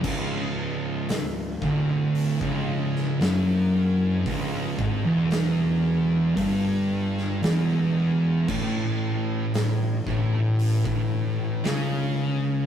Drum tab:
CC |x---------------|----------------|x---------------|
HH |----o---o---o---|o---o---o---o---|----o---o---o---|
SD |----o------oo---|----o------oo---|----o-------o---|
BD |o-----o--o------|o-o-----o-------|o-----o--o------|